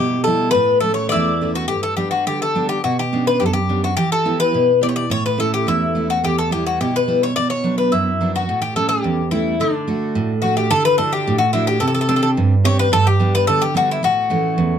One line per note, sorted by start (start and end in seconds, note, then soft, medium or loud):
0.00 0.53 B2 medium
0.00 0.15 G3 medium
0.00 0.16 B3 soft
0.00 0.16 E4 medium
0.00 0.23 G4 medium
0.24 0.50 G3 medium
0.24 0.50 B3 soft
0.24 0.50 E4 medium
0.24 0.50 A4 medium
0.51 1.10 A2 medium
0.51 0.80 B4 loud
0.80 1.29 A3 medium
0.80 1.29 C#4 soft
0.80 1.30 E4 medium
0.80 0.94 A4 medium
0.94 1.09 C#5 medium
1.09 1.52 E4 medium
1.09 1.50 D5 medium
1.13 1.68 E2 medium
1.41 1.64 A3 soft
1.41 1.64 C#4 soft
1.41 1.65 E4 soft
1.55 1.67 F#4 medium
1.68 2.24 G2 medium
1.68 1.82 G4 medium
1.83 1.96 A4 medium
1.97 2.43 G3 soft
1.97 2.43 B3 soft
1.97 2.43 D4 medium
1.97 2.10 G4 medium
2.11 2.26 F#4 medium
2.27 2.81 D3 medium
2.27 2.41 G4 medium
2.42 2.68 A4 medium
2.55 2.78 G3 soft
2.55 2.78 B3 soft
2.55 2.78 D4 medium
2.69 2.82 G4 medium
2.84 3.39 B2 medium
2.84 2.98 F#4 medium
2.99 3.25 G4 medium
3.13 3.57 B3 soft
3.13 3.57 C#4 soft
3.13 3.58 D4 medium
3.27 3.41 B4 medium
3.40 3.96 F#2 medium
3.40 3.45 G4 medium
3.46 3.53 A4 medium
3.53 3.80 G4 medium
3.69 3.91 B3 soft
3.69 3.91 C#4 soft
3.69 3.92 D4 soft
3.84 3.96 F#4 medium
3.97 4.52 E3 medium
3.97 4.10 G4 loud
4.12 4.38 A4 medium
4.25 4.70 B3 medium
4.25 4.71 E4 soft
4.25 4.71 G4 medium
4.40 4.79 B4 medium
4.54 5.08 B2 medium
4.81 5.04 B3 soft
4.81 5.04 E4 soft
4.81 5.04 G4 medium
4.81 4.88 D5 medium
4.89 4.95 C#5 medium
4.96 5.11 D5 medium
5.10 5.64 A2 medium
5.10 5.25 C#5 loud
5.26 5.38 B4 medium
5.38 5.83 A3 medium
5.38 5.83 C#4 soft
5.38 5.83 E4 medium
5.38 5.52 A4 medium
5.54 5.66 G4 medium
5.67 6.21 E2 medium
5.67 6.06 E4 medium
5.95 6.17 A3 soft
5.95 6.18 C#4 soft
5.95 6.18 E4 soft
6.10 6.24 F#4 medium
6.24 6.78 E2 medium
6.24 6.37 G4 medium
6.38 6.52 A4 medium
6.51 6.96 G3 soft
6.51 6.96 B3 soft
6.51 6.96 E4 medium
6.51 6.65 G4 medium
6.66 6.80 F#4 medium
6.81 7.34 B2 medium
6.81 6.94 G4 medium
6.96 7.21 B4 medium
7.08 7.30 G3 soft
7.08 7.30 B3 soft
7.08 7.30 E4 medium
7.23 7.35 C#5 medium
7.36 7.90 B2 medium
7.36 7.49 D5 loud
7.50 7.77 C#5 medium
7.64 8.08 F#3 medium
7.64 8.09 B3 soft
7.64 8.09 D4 soft
7.78 7.91 B4 medium
7.92 8.46 F#2 medium
7.92 8.31 E4 medium
8.21 8.42 F#3 soft
8.21 8.43 B3 soft
8.21 8.43 D4 soft
8.36 8.61 F#4 medium
8.49 9.02 A2 medium
8.62 8.74 G4 medium
8.76 9.21 G3 soft
8.76 9.21 A3 soft
8.76 9.21 C#4 medium
8.76 8.88 A4 medium
8.89 9.28 G4 medium
9.04 9.58 E2 medium
9.31 9.53 G3 soft
9.31 9.54 A3 soft
9.31 9.54 C#4 soft
9.31 9.60 E4 medium
9.60 10.14 D3 medium
9.60 10.40 D4 medium
9.88 10.32 A3 soft
9.88 10.32 D4 soft
9.88 10.32 F#4 soft
10.15 10.69 A2 medium
10.42 10.66 A3 soft
10.42 10.66 D4 soft
10.42 10.55 F#4 medium
10.42 10.66 F#4 medium
10.57 10.71 G4 medium
10.71 11.25 D3 medium
10.71 10.84 A4 loud
10.85 10.97 B4 medium
10.98 11.43 D4 medium
10.98 11.44 E4 soft
10.98 11.44 F#4 medium
10.98 11.11 A4 medium
11.13 11.38 G4 medium
11.27 11.81 A2 medium
11.38 11.53 F#4 medium
11.53 11.76 D4 medium
11.53 11.67 E4 medium
11.53 11.77 E4 soft
11.53 11.77 F#4 medium
11.67 11.82 G4 medium
11.80 12.36 C3 medium
11.80 11.86 A4 medium
11.88 11.93 A4 medium
11.95 12.00 A4 medium
12.01 12.08 A4 medium
12.09 12.53 C4 medium
12.09 12.54 D4 soft
12.09 12.54 G4 medium
12.09 12.15 A4 medium
12.16 12.21 A4 medium
12.23 12.30 A4 medium
12.37 12.90 G2 medium
12.64 12.87 C4 soft
12.64 12.87 D4 soft
12.64 12.87 G4 medium
12.64 12.79 C#5 loud
12.79 12.92 B4 medium
12.92 13.46 G2 medium
12.92 13.06 A4 loud
13.07 13.32 G4 medium
13.20 13.64 G3 medium
13.20 13.64 B3 medium
13.20 13.65 D4 medium
13.35 13.47 B4 medium
13.47 14.02 D3 medium
13.47 13.62 A4 loud
13.62 13.75 G4 medium
13.74 13.97 G3 soft
13.74 13.97 B3 soft
13.74 13.98 D4 medium
13.74 13.90 F#4 medium
13.91 14.03 E4 medium
14.03 14.56 A2 medium
14.03 14.79 F#4 loud
14.30 14.74 E3 medium
14.30 14.75 A3 soft
14.30 14.75 C#4 medium
14.58 14.79 E2 medium